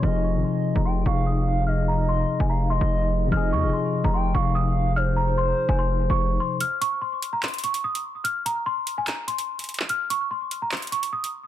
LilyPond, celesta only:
\new Staff \with { instrumentName = "Celesta" } { \time 4/4 \key f \minor \tempo 4 = 146 f'''8 des'''8 c'''8. bes''16 c'''8 des'''8 ees'''8 r8 | f'''8 bes''8 c'''8. aes''16 bes''8 c'''4. | f'''8 des'''8 c'''8. bes''16 c'''8 des'''8 ees'''8 r8 | f'''8 bes''8 c'''8. aes''16 c'''8. des'''8. c'''8 |
f'''8 des'''8 c'''8. bes''16 r8 des'''8 ees'''8 r8 | f'''8 bes''8 c'''8. aes''16 r8 c'''4. | f'''8 des'''8 c'''8. bes''16 r8 des'''8 ees'''8 r8 | }